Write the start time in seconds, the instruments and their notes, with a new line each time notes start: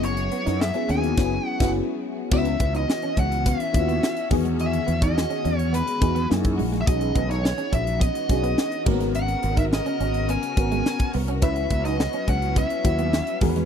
Already playing: string section F#3 G#3 B3 F#4, fm electric piano B3 C#4 E4 G#4
0.03 fretless electric bass F#1, lead electric guitar C#5, closed hi-hat
0.17 muted clean electric guitar stroke, closed hi-hat
0.32 clean electric guitar B3, closed hi-hat
0.46 fretless electric bass F#2, clean electric guitar D#4, snare, closed hi-hat
0.60 lead electric guitar E5, muted clean electric guitar stroke, snare
0.74 fm electric piano B3 C#4 E4 G#4, clean electric guitar C#4, closed hi-hat
0.89 fretless electric bass D#2, fm electric piano B3 C#4 E4 F#4, clean electric guitar C#4, lead electric guitar G#5, closed hi-hat
0.96 fm electric piano G#4
1.04 closed hi-hat
1.17 fretless electric bass F#1, fm electric piano B3 C#4 E4 F#4, kick, snare, crash
1.25 fm electric piano G#4
1.48 lead electric guitar F#5
1.60 fretless electric bass F#1, fm electric piano B3 C#4 E4 F#4, kick, snare, crash
1.68 fm electric piano G#4
2.31 fretless electric bass C#2, string section E3 B3 C#4 F#4, fm electric piano B3 C#4 E4 F#4, lead electric guitar E5, kick, crash
2.45 muted clean electric guitar stroke, closed hi-hat
2.60 fretless electric bass C#2, clean electric guitar B3, kick, closed hi-hat
2.75 clean electric guitar D#4, lead electric guitar D#5, closed hi-hat
2.88 muted clean electric guitar stroke, snare
3.02 clean electric guitar C#4, closed hi-hat
3.17 fretless electric bass C#2, clean electric guitar C#4, lead electric guitar F#5, kick, closed hi-hat
3.32 closed hi-hat
3.46 clean electric guitar B3, lead electric guitar E5, kick, closed hi-hat
3.60 muted clean electric guitar stroke, closed hi-hat
3.73 fretless electric bass D#2, fm electric piano B3 C#4 E4 F4, kick, closed hi-hat
3.81 fm electric piano F#4
3.88 clean electric guitar B3, closed hi-hat
4.03 muted clean electric guitar stroke, snare
4.17 closed hi-hat
4.30 fretless electric bass E2, string section D#3 G#3, fm electric piano D#3 B3 F#4 G#4, clean electric guitar G#3, kick, open hi-hat
4.45 clean electric guitar G#3, closed hi-hat
4.59 lead electric guitar E5, closed hi-hat
4.73 muted clean electric guitar stroke, closed hi-hat
4.87 fretless electric bass E2, clean electric guitar B3, closed hi-hat
5.02 clean electric guitar D#4, lead electric guitar D#5, kick, closed hi-hat
5.16 muted clean electric guitar stroke, snare
5.30 clean electric guitar C#4, closed hi-hat
5.45 fretless electric bass E2, clean electric guitar C#4, closed hi-hat
5.57 lead electric guitar C#5, closed hi-hat
5.73 clean electric guitar B3, lead electric guitar B4, closed hi-hat
5.87 muted clean electric guitar stroke, closed hi-hat
6.01 fretless electric bass E2, fm electric piano B3 D#4 F#4 G#4, kick, closed hi-hat
6.15 clean electric guitar B3, closed hi-hat
6.29 fretless electric bass F#2, string section E3 A#3 F#4, fm electric piano A#3 D#4 E4 G#4, muted clean electric guitar stroke, snare
6.44 kick, closed hi-hat
6.58 fretless electric bass A#1, clean electric guitar G#3, open hi-hat
6.72 clean electric guitar G#3, snare, closed hi-hat
6.81 lead electric guitar E5
6.87 fretless electric bass B1, string section B3 F#4, fm electric piano C#4 D#4 F#4 G#4, lead electric guitar D#5, kick, closed hi-hat
7.01 muted clean electric guitar stroke, closed hi-hat
7.15 fretless electric bass B1, clean electric guitar B3, kick, closed hi-hat
7.29 clean electric guitar D#4, lead electric guitar C#5, closed hi-hat
7.44 muted clean electric guitar stroke, snare
7.58 clean electric guitar C#4, closed hi-hat
7.72 fretless electric bass A#1, clean electric guitar C#4, lead electric guitar E5, kick, closed hi-hat
7.87 closed hi-hat
8.00 clean electric guitar B3, lead electric guitar D#5, kick, closed hi-hat
8.15 muted clean electric guitar stroke, closed hi-hat
8.29 fretless electric bass B1, fm electric piano C#4 D4 F#4 G#4, kick, closed hi-hat
8.37 fm electric piano D#4
8.44 clean electric guitar B3, closed hi-hat
8.58 muted clean electric guitar stroke, snare
8.72 closed hi-hat
8.86 fretless electric bass G#1, string section C#3 A#4, clean electric guitar G#3, fm electric piano A#3 C#4 F#4 A#4, kick, crash
8.93 fm electric piano B3
9.00 clean electric guitar G#3, snare, closed hi-hat
9.15 lead electric guitar F#5, closed hi-hat
9.28 muted clean electric guitar stroke, closed hi-hat
9.43 fretless electric bass G#1, clean electric guitar B3, closed hi-hat
9.57 clean electric guitar D#4, lead electric guitar E5, kick, closed hi-hat
9.72 lead electric guitar D#5, muted clean electric guitar stroke, snare
9.86 clean electric guitar C#4, closed hi-hat
10.00 fretless electric bass G#1, clean electric guitar C#4, closed hi-hat
10.14 closed hi-hat
10.29 clean electric guitar B3, lead electric guitar G#5, closed hi-hat
10.43 muted clean electric guitar stroke, closed hi-hat
10.57 fretless electric bass G#1, fm electric piano B3 C#4 F#4 A#4, kick, closed hi-hat
10.72 clean electric guitar G#3, closed hi-hat
10.86 muted clean electric guitar stroke, snare
10.99 kick, closed hi-hat
11.13 fretless electric bass C2, clean electric guitar B3, open hi-hat
11.28 clean electric guitar C#4, closed hi-hat
11.41 fretless electric bass C#2, string section F#3 B3 C#4, fm electric piano C#4 E4 F#4 B4, lead electric guitar E5, kick, closed hi-hat
11.56 muted clean electric guitar stroke, closed hi-hat
11.70 fretless electric bass C#2, clean electric guitar B3, kick, closed hi-hat
11.85 clean electric guitar D#4, lead electric guitar D#5, snare, closed hi-hat
12.00 muted clean electric guitar stroke, snare
12.13 clean electric guitar C#4, closed hi-hat
12.28 fretless electric bass C#2, clean electric guitar C#4, lead electric guitar F#5, kick, closed hi-hat
12.42 closed hi-hat
12.56 clean electric guitar B3, lead electric guitar E5, kick, closed hi-hat
12.70 muted clean electric guitar stroke, closed hi-hat
12.84 fretless electric bass D#2, fm electric piano C#4 E4 F#4 B4, kick, closed hi-hat
12.99 clean electric guitar B3, closed hi-hat
13.13 muted clean electric guitar stroke, snare
13.27 closed hi-hat
13.41 fretless electric bass E2, fm electric piano D#3 F#4 G#4 A#4, string section G#3, clean electric guitar G#3, kick, open hi-hat
13.49 fm electric piano B4
13.56 clean electric guitar G#3, snare, closed hi-hat